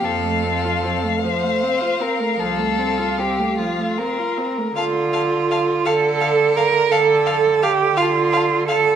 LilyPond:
<<
  \new Staff \with { instrumentName = "Violin" } { \time 12/8 \key f \major \tempo 4. = 54 f''1~ f''4. r8 | \key d \minor a''8 a''8 a''8 a''8 a''8 a''8 a''8 a''8 a''8 a''8 a''8 a''8 | }
  \new Staff \with { instrumentName = "Violin" } { \time 12/8 \key f \major a'4. c''4 bes'8 a'4 g'8 f'8 bes'4 | \key d \minor f''8 f''8 f''8 f''8 f''8 f''8 f''8 f''8 f''8 f''8 f''8 f''8 | }
  \new Staff \with { instrumentName = "Cello" } { \time 12/8 \key f \major f,4. r4. c,4. r4. | \key d \minor f'4. a'4 bes'8 a'4 g'8 f'4 a'8 | }
  \new Staff \with { instrumentName = "Viola" } { \time 12/8 \key f \major f16 a16 c'16 f'16 c'16 a16 f16 a16 c'16 f'16 c'16 a16 f16 a16 c'16 f'16 c'16 a16 f16 a16 c'16 f'16 c'16 a16 | \key d \minor d4. d4. d4. d4. | }
>>